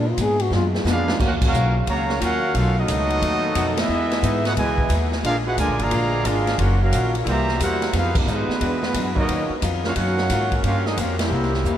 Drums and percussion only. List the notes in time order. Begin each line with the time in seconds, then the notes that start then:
0.18 kick, hi-hat pedal, ride
0.39 ride
0.52 snare
0.75 snare
0.86 snare, hi-hat pedal
1.08 snare
1.20 kick, snare, crash
1.42 kick, crash
1.54 hi-hat pedal
1.87 kick, ride
2.09 snare
2.21 kick, hi-hat pedal, ride
2.55 kick, ride
2.88 kick, hi-hat pedal, ride
3.10 ride
3.22 kick, ride
3.55 kick, hi-hat pedal, ride
3.77 snare, ride
4.11 snare, ride
4.23 kick, hi-hat pedal, ride
4.45 snare, ride
4.56 kick, ride
4.78 kick
4.90 kick, hi-hat pedal, ride
5.12 snare
5.24 kick, ride
5.57 kick, hi-hat pedal, ride
5.79 ride
5.91 kick, ride
6.25 kick, hi-hat pedal, ride
6.47 snare, ride
6.58 kick, ride
6.92 kick, hi-hat pedal, ride
7.15 ride
7.26 kick, ride
7.48 snare
7.60 kick, hi-hat pedal, ride
7.82 snare, ride
7.93 kick, snare, ride
8.15 kick, crash
8.28 hi-hat pedal
8.50 snare
8.61 kick, ride
8.82 snare
8.94 kick, hi-hat pedal, ride
9.16 kick
9.28 kick, ride
9.62 kick, hi-hat pedal, ride
9.84 snare
9.96 kick, ride
10.18 snare
10.29 kick, snare, hi-hat pedal, ride
10.52 kick, ride
10.64 kick, ride
10.86 snare
10.97 kick, hi-hat pedal, ride
11.19 snare, ride
11.42 snare
11.54 snare
11.65 hi-hat pedal